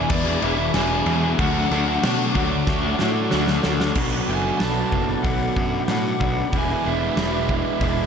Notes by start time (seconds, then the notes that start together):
Already playing: E2 B2 E3 G#3 B3 D4 E4 G#4 E5 G#5 B5 D6
0.10 E2 B2 E3 B3 D5, kick, crash
0.25 B3 D4 E4 G#4
0.29 E3 G#3
0.41 E1 E2 B2 E3 G#3 B3 D4 G#4 E5, crash
0.46 E4
0.58 muted overdriven electric guitar stroke
0.74 E1 E2 B2 E3 G#3 B3 D4 G#4 G#5, snare, crash
0.79 E4
0.89 G#3 B3 D4 E4 G#4
0.94 E3
1.06 E2 B2 E3 G#3 D4 E4 G#4, crash
1.22 G#3 B3 D4 E4 G#4
1.27 E3
1.38 D2 D3 F#3 A3 D4 F#4 A4 F#5 C#6 D6, kick, crash
1.71 D2 D3 A3 D4 F#4 A4, crash
1.86 A3 D4 F#4
2.01 B2 D3 F#3 A3 D4 F#4, snare, crash
2.05 A3 D4
2.33 D2 D3 F#3 A3 D4 F#4, muted overdriven electric guitar stroke, kick, crash
2.51 A3 D4 F#4, muted overdriven electric guitar stroke
2.67 D2 D3 A3 D4, kick, snare
2.82 A3 D4 F#4
2.98 A2 D3 F#3 A3 D4 F#4, snare
3.03 D4
3.14 muted overdriven electric guitar stroke
3.29 D3 F#3 A3 D4 F#4, snare
3.33 D2 D3 A3 D4
3.47 A3 D4 F#4, snare
3.62 D2 D3 A3 D4 F#4 A4, snare
3.66 D4
3.79 A3 D4 F#4, snare
3.94 B1 B2 F#3 B3 D4 F#4 A4 B4 F#5 B5 D6, kick, crash
4.26 F#1 A3 B3 D4 F#4 B4 G#5
4.58 B1 F#3 B3 D4 F#4 B4 A5, snare, open hi-hat
4.92 F#1 A3, kick
5.22 B1 B2 F#3 B3 D4 F#4 B4 F#5, kick, open hi-hat
5.27 D4
5.57 F#2 A3, kick
5.86 A2 B3 D4 F#4 B4, snare, open hi-hat
5.91 F#5
6.20 B1 D4, kick
6.51 E1 E2 B2 E3 B3 D4 E4 G#4 B4, kick, open hi-hat
6.55 G#3 E4 G#4 G#5
6.83 E1 B3 D4 G#4 B4 E5
7.16 E1 E3 B3 D4 G#4 B4, snare, open hi-hat
7.49 B3, kick
7.79 E1 E3 B3 D4 G#4 B4, kick, open hi-hat